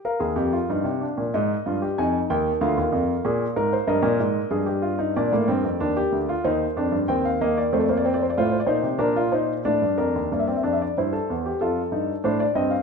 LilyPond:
<<
  \new Staff \with { instrumentName = "Grand piano" } { \time 4/4 \key ees \major \tempo 4 = 94 << { f''2 ees''4 aes''8 g''8 | f''2 ees''2 | d''2 c''4 g''16 f''16 ees''16 d''16 | c''32 d''32 c''32 d''32 c''32 d''32 c''32 d''32 c''32 d''32 c''32 d''32 c''8 bes'8 c''8 d''8 bes'8 |
d''32 e''32 d''32 e''32 d''32 e''32 d''16 c''4 a'4 c''16 d''16 ees''16 f''16 | } \\ { bes'16 aes'16 g'16 f'16 ees'8 d'8 ees'8 f'16 g'16 ees'4 | f'4 aes'8 bes'16 c''16 bes'4 aes'16 g'16 f'16 ees'16 | d'16 bes16 c'8 d'16 g'8 f'16 ees'8 d'8 c'8 bes8 | a16 bes16 c'8 f'8 ees'8 d'16 f'16 ees'8 d'4 |
bes16 c'16 d'8 e'16 a'8 g'16 f'8 ees'8 d'8 c'8 | } >> }
  \new Staff \with { instrumentName = "Grand piano" } { \clef bass \time 4/4 \key ees \major r16 ees,16 f,8 g,16 c8 bes,16 aes,8 g,8 f,8 ees,8 | d,16 ees,16 f,8 bes,8 aes,8 g,16 bes,16 aes,8 g,4 | bes,16 a,16 g,16 f,16 ees,8 d,8 ees,8 f,16 g,16 ees,4 | f,4 a,8 bes,16 c16 bes,4 a,16 g,16 f,16 ees,16 |
g,8 f,8 g,8 e,8 f,8 g,8 a,8 g,8 | }
>>